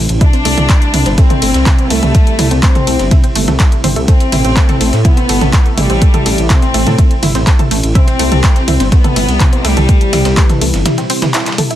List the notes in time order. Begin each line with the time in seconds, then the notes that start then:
Already playing: C3 A3 E4
0.09 A1, closed hi-hat
0.21 G3 D4 E4 E5, kick, closed hi-hat, mid tom, ride
0.33 C4 C5, closed hi-hat, ride
0.45 C2 A3 A4, open hi-hat, ride
0.58 C2 A4 A5, closed hi-hat, mid tom
0.69 A3 A4, kick, snare, clap, closed hi-hat, ride
0.82 snare, closed hi-hat
0.94 C2 E4 E5, mid tom, open hi-hat, ride
1.06 G1 C4 C5, snare, closed hi-hat
1.18 A3 C4 A4, kick, closed hi-hat, ride
1.30 A4 A5, closed hi-hat, mid tom
1.42 G1 A3 A4, open hi-hat, ride
1.54 C2, snare, closed hi-hat
1.66 E4 E5, kick, snare, clap, closed hi-hat, mid tom, ride
1.79 C4 C5, closed hi-hat
1.90 C2 A3 A4, open hi-hat, ride
2.03 C2 A4 A5, closed hi-hat, mid tom
2.15 A3 A4, kick, closed hi-hat, ride
2.27 closed hi-hat
2.39 C2 E4 E5, snare, mid tom, open hi-hat, ride
2.51 C2 C4 C5, closed hi-hat
2.63 A3 C4 A4, kick, snare, clap, closed hi-hat, ride
2.75 A4 A5, snare, closed hi-hat, mid tom
2.87 C2 A3 A4, open hi-hat, ride
2.99 G1, snare, closed hi-hat
3.11 E4 E5, kick, closed hi-hat, mid tom, ride
3.24 C4 C5, closed hi-hat
3.35 G1 A3 A4, open hi-hat, ride
3.48 C2 A3 A4, snare, closed hi-hat, mid tom
3.60 A3 A4, kick, snare, clap, closed hi-hat, ride
3.72 closed hi-hat
3.84 G1 C4 C5, mid tom, open hi-hat, ride
3.96 C2 A3 A4, closed hi-hat
4.08 A3 C4 A4, kick, closed hi-hat, ride
4.20 closed hi-hat, ride
4.32 A1 E4 E5, mid tom, open hi-hat, ride
4.45 A1 C4 C5, closed hi-hat
4.56 A3 A4, kick, snare, clap, closed hi-hat, ride
4.69 A4 A5, snare, closed hi-hat, mid tom
4.81 A1 A3 A4, open hi-hat, ride
4.93 A2, snare, closed hi-hat
5.05 B3 E4 E5, kick, closed hi-hat, mid tom, ride
5.17 C4 C5, closed hi-hat
5.29 G1 A3 A4, open hi-hat, ride
5.41 A1 A4 A5, snare, closed hi-hat, mid tom
5.53 A3 A4, kick, snare, clap, closed hi-hat, ride
5.66 closed hi-hat
5.77 A1 G3 E4 E5, mid tom, open hi-hat, ride
5.90 A1 C4 C5, closed hi-hat
6.02 A3 A4, kick, closed hi-hat, ride
6.14 A4 A5, closed hi-hat, mid tom
6.26 A1 A3 A4, snare, open hi-hat, ride
6.38 A1, closed hi-hat
6.50 C4 E4 E5, kick, snare, clap, closed hi-hat, mid tom, ride
6.62 C4 C5, snare, closed hi-hat
6.74 A1 A3 A4, open hi-hat, ride
6.87 A2 A4 A5, snare, closed hi-hat, mid tom
6.99 A3 A4, kick, closed hi-hat, ride
7.11 closed hi-hat
7.23 G1 E4 E5, mid tom, open hi-hat, ride
7.35 A1 C4 C5, snare, closed hi-hat
7.47 A3 A4, kick, snare, clap, closed hi-hat, ride
7.59 A4 A5, closed hi-hat, mid tom
7.71 A1 A3 A4, open hi-hat, ride
7.83 A1, closed hi-hat
7.95 C3 G3 C4 E4 E5, kick, closed hi-hat, mid tom, ride
8.07 C4 C5, closed hi-hat, ride
8.19 C2 A3 A4, open hi-hat, ride
8.32 C2 A4 A5, closed hi-hat, mid tom
8.44 A3 A4, kick, snare, clap, closed hi-hat, ride
8.56 snare, closed hi-hat
8.68 C2 E4 E5, mid tom, open hi-hat, ride
8.80 G1 C4 C5, snare, closed hi-hat
8.92 A3 B3 A4, kick, closed hi-hat, ride
9.04 A4 A5, closed hi-hat, mid tom
9.16 G1 A3 A4, open hi-hat, ride
9.28 C2, closed hi-hat, ride
9.40 E4 E5, kick, clap, closed hi-hat, mid tom, ride
9.53 C4 C5, closed hi-hat
9.65 C2 G3 A3 A4, snare, open hi-hat, ride
9.77 C2 A4 A5, snare, closed hi-hat, mid tom
9.89 A3 A4, kick, closed hi-hat, ride
10.01 closed hi-hat
10.13 C2 E4 E5, snare, mid tom, open hi-hat, ride
10.25 C2 C4 C5, snare, closed hi-hat, ride
10.37 E3 A3 A4, kick, snare, clap, closed hi-hat, ride
10.49 A4 A5, snare, closed hi-hat, mid tom
10.61 C2 A3 A4, open hi-hat, ride
10.74 G1, snare, closed hi-hat
10.86 E4 E5, snare, closed hi-hat, mid tom, ride
10.98 C4 C5, snare, closed hi-hat
11.10 C4 C5, open hi-hat, ride
11.22 E3 E4, snare, closed hi-hat, mid tom, ride
11.34 E4 E5, snare, clap, closed hi-hat, ride
11.40 snare, ride
11.46 snare, clap, closed hi-hat, ride
11.52 snare, ride
11.58 A4 A5, mid tom, open hi-hat, ride
11.71 E4 E5, closed hi-hat